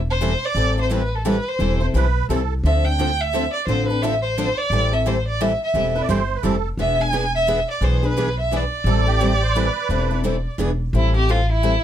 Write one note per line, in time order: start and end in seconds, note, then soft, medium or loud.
0.00 0.34 E1 medium
0.10 0.47 C5 medium
0.21 0.32 E3 medium
0.21 0.32 G3 medium
0.21 0.32 C4 medium
0.21 0.32 E4 medium
0.21 0.32 A4 loud
0.45 0.78 D5 loud
0.55 1.38 A1 medium
0.55 0.76 E3 medium
0.55 0.76 G3 medium
0.55 0.76 C4 medium
0.55 0.76 E4 medium
0.55 0.76 A4 medium
0.77 0.90 C4 soft
0.77 0.90 E4 medium
0.77 0.90 A4 soft
0.77 0.92 C5 medium
0.90 1.01 E3 medium
0.90 1.01 G3 medium
0.90 1.01 C4 medium
0.90 1.01 E4 medium
0.90 1.01 A4 medium
0.90 1.17 B4 medium
1.15 1.27 A4 medium
1.25 1.35 E3 medium
1.25 1.36 G3 medium
1.25 1.36 C4 loud
1.25 1.36 E4 loud
1.25 1.36 A4 loud
1.25 1.50 B4 medium
1.48 1.81 C5 medium
1.59 1.87 E1 medium
1.59 1.79 E3 medium
1.59 1.79 G3 medium
1.59 1.79 C4 medium
1.59 1.79 E4 medium
1.59 1.79 A4 medium
1.80 1.93 C4 soft
1.80 1.93 E4 soft
1.80 1.93 A4 soft
1.80 1.87 C5 medium
1.94 2.23 B1 medium
1.94 2.05 E3 medium
1.94 2.05 G3 medium
1.94 2.05 C4 medium
1.94 2.05 E4 medium
1.94 2.05 A4 medium
1.94 2.27 B4 medium
2.29 2.58 C2 medium
2.29 2.40 E3 medium
2.29 2.40 G3 medium
2.29 2.40 C4 medium
2.29 2.40 E4 medium
2.29 2.54 A4 medium
2.29 2.40 A4 medium
2.63 3.46 D2 medium
2.63 2.84 D3 medium
2.63 2.84 F3 medium
2.63 2.84 C4 medium
2.63 2.84 D4 medium
2.63 2.84 A4 medium
2.63 2.86 E5 medium
2.85 2.99 C4 soft
2.85 2.99 D4 soft
2.85 2.98 A4 soft
2.85 3.22 G5 medium
2.99 3.09 D3 medium
2.99 3.10 F3 medium
2.99 3.09 C4 medium
2.99 3.10 D4 medium
2.99 3.10 A4 medium
3.21 3.53 E5 loud
3.35 3.44 D3 medium
3.35 3.44 F3 medium
3.35 3.44 C4 medium
3.35 3.44 D4 medium
3.35 3.45 A4 medium
3.53 3.66 D5 medium
3.67 4.50 A1 medium
3.67 3.88 D3 medium
3.67 3.88 F3 medium
3.67 3.88 C4 medium
3.67 3.88 D4 medium
3.67 3.88 A4 medium
3.67 3.87 C5 medium
3.88 4.03 C4 soft
3.88 4.02 D4 soft
3.88 4.02 A4 medium
3.88 4.04 B4 medium
4.02 4.14 D3 medium
4.02 4.14 F3 medium
4.02 4.14 C4 medium
4.02 4.14 D4 medium
4.02 4.14 A4 medium
4.02 4.21 E5 medium
4.22 4.59 C5 medium
4.38 4.48 D3 medium
4.38 4.48 F3 medium
4.38 4.48 C4 loud
4.38 4.48 D4 medium
4.38 4.48 A4 loud
4.58 4.95 D5 loud
4.70 5.53 A1 medium
4.70 4.91 E3 medium
4.70 4.92 G3 medium
4.70 4.92 C4 medium
4.70 4.92 E4 medium
4.70 4.92 A4 medium
4.93 5.05 C4 soft
4.93 5.05 E4 soft
4.93 5.05 A4 medium
4.93 5.09 E5 medium
5.06 5.16 E3 medium
5.06 5.17 G3 medium
5.06 5.17 C4 medium
5.06 5.17 E4 medium
5.06 5.17 A4 medium
5.06 5.27 C5 medium
5.28 5.43 D5 medium
5.40 5.51 E3 medium
5.40 5.51 G3 medium
5.40 5.51 C4 medium
5.40 5.51 E4 medium
5.40 5.51 A4 loud
5.40 5.61 E5 medium
5.63 5.94 E5 medium
5.74 6.02 E1 medium
5.74 5.95 E3 medium
5.74 5.95 G3 medium
5.74 5.95 C4 medium
5.74 5.95 E4 medium
5.74 5.94 A4 medium
5.95 6.09 C4 soft
5.95 6.09 E4 soft
5.95 6.09 A4 soft
5.95 6.02 B4 medium
6.01 6.08 D5 medium
6.08 6.38 G1 medium
6.08 6.20 E3 medium
6.08 6.20 G3 medium
6.08 6.21 C4 medium
6.08 6.21 E4 medium
6.08 6.21 A4 medium
6.08 6.37 C5 medium
6.36 6.43 B4 medium
6.43 6.73 F1 medium
6.43 6.55 E3 medium
6.43 6.55 G3 medium
6.43 6.55 C4 medium
6.43 6.55 E4 medium
6.43 6.69 A4 medium
6.43 6.55 A4 medium
6.77 7.61 E1 medium
6.77 6.98 E3 medium
6.77 6.99 B3 medium
6.77 6.99 D4 medium
6.77 6.98 G#4 medium
6.77 7.00 B4 medium
6.77 7.03 E5 medium
7.00 7.12 B3 soft
7.00 7.12 D4 soft
7.00 7.12 G#4 soft
7.00 7.35 G#5 loud
7.13 7.24 E3 medium
7.13 7.24 B3 medium
7.13 7.24 D4 medium
7.13 7.24 G#4 medium
7.13 7.24 B4 medium
7.35 7.67 E5 loud
7.48 7.59 E3 medium
7.48 7.59 B3 medium
7.48 7.59 D4 medium
7.48 7.59 G#4 medium
7.48 7.59 B4 medium
7.71 7.85 D5 medium
7.81 8.65 B1 medium
7.81 8.02 E3 medium
7.81 8.02 B3 medium
7.81 8.02 D4 medium
7.81 8.02 G#4 medium
7.81 8.03 B4 medium
7.81 8.07 C5 medium
8.03 8.16 B3 soft
8.03 8.17 D4 soft
8.03 8.16 G#4 soft
8.03 8.39 B4 medium
8.17 8.28 E3 medium
8.17 8.28 B3 medium
8.17 8.28 D4 medium
8.17 8.28 G#4 medium
8.17 8.28 B4 medium
8.40 8.58 E5 medium
8.53 8.63 E3 medium
8.53 8.63 B3 medium
8.53 8.63 D4 loud
8.53 8.63 G#4 medium
8.53 8.63 B4 medium
8.53 10.61 D5 medium
8.84 9.68 A1 medium
8.84 9.06 E3 medium
8.84 9.06 G3 medium
8.84 9.06 C4 medium
8.84 9.05 E4 medium
8.84 9.05 A4 medium
9.06 9.20 C4 soft
9.06 9.20 E4 medium
9.06 9.43 G4 medium
9.06 9.20 A4 soft
9.20 9.31 E3 medium
9.20 9.31 G3 medium
9.20 9.31 C4 medium
9.20 9.32 E4 medium
9.20 9.31 A4 medium
9.42 9.55 C5 medium
9.55 9.66 E3 medium
9.55 9.66 G3 medium
9.55 9.66 C4 medium
9.55 9.66 E4 medium
9.55 9.67 A4 medium
9.55 10.20 B4 medium
9.89 10.45 E1 medium
9.89 10.10 E3 medium
9.89 10.10 G3 medium
9.89 10.10 C4 medium
9.89 10.10 E4 medium
9.89 10.09 A4 medium
10.11 10.23 C4 soft
10.11 10.24 E4 medium
10.11 10.24 A4 medium
10.24 10.35 E3 medium
10.24 10.35 G3 medium
10.24 10.35 C4 medium
10.24 10.35 E4 medium
10.24 10.36 A4 medium
10.58 10.86 E1 medium
10.58 10.70 E3 medium
10.58 10.70 B3 loud
10.58 10.70 D4 loud
10.58 10.70 G#4 medium
10.58 10.70 B4 medium
10.93 11.76 A1 medium
10.93 11.14 E3 medium
10.93 11.14 G3 medium
10.93 11.14 C4 medium
10.93 11.14 E4 medium
10.93 11.13 A4 medium
11.14 11.28 C4 soft
11.14 11.28 E4 soft
11.14 11.32 G4 medium
11.14 11.27 A4 medium
11.29 11.39 E3 medium
11.29 11.39 G3 medium
11.29 11.39 C4 medium
11.29 11.39 E4 medium
11.29 11.50 F4 medium
11.29 11.40 A4 medium
11.52 11.84 E4 loud
11.63 11.74 E3 medium
11.63 11.74 G3 medium
11.63 11.74 C4 medium
11.63 11.74 E4 medium
11.63 11.74 A4 medium